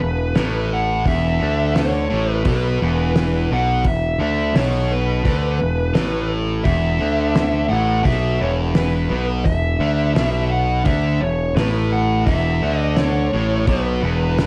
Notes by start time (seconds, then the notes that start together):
Already playing: B4
0.00 E1 E2
0.35 A1 A2, snare, open hi-hat
0.74 F#5
1.05 E1 E2 E5, kick, open hi-hat
1.39 D2 D3
1.76 C#5, snare, open hi-hat
2.10 A1 A2
2.32 B4
2.45 B1 B2 B4, kick, open hi-hat
2.81 E1 E2
3.16 snare, open hi-hat
3.51 B1 B2 F#5
3.84 E1 E2 E5, kick, open hi-hat
4.20 D2 D3 E5
4.56 B1 B2 C#5, snare, open hi-hat
4.93 B4
5.25 D2 D3, kick, open hi-hat
5.60 E1 E2
5.94 A1 A2, snare, open hi-hat
6.64 E1 E2 E5, kick, open hi-hat
6.98 D2 D3
7.36 snare, open hi-hat
7.68 A1 A2 F#5
8.03 B1 B2 E5, kick, open hi-hat
8.39 E1 E2 C#5
8.75 B4, snare, open hi-hat
9.10 B1 B2
9.45 E1 E2 E5, kick, open hi-hat
9.80 D2 D3
10.15 B1 B2, snare, open hi-hat
10.51 F#5
10.85 D2 D3 E5, kick, open hi-hat
11.21 E1 E2 C#5
11.56 A1 A2 B4, snare, open hi-hat
11.93 F#5
12.26 E1 E2 E5, kick, open hi-hat
12.62 D2 D3
12.73 D#5
12.96 C#5, snare, open hi-hat
13.33 A1 A2
13.67 B1 B2 B4, kick, open hi-hat
14.02 E1 E2
14.38 snare, open hi-hat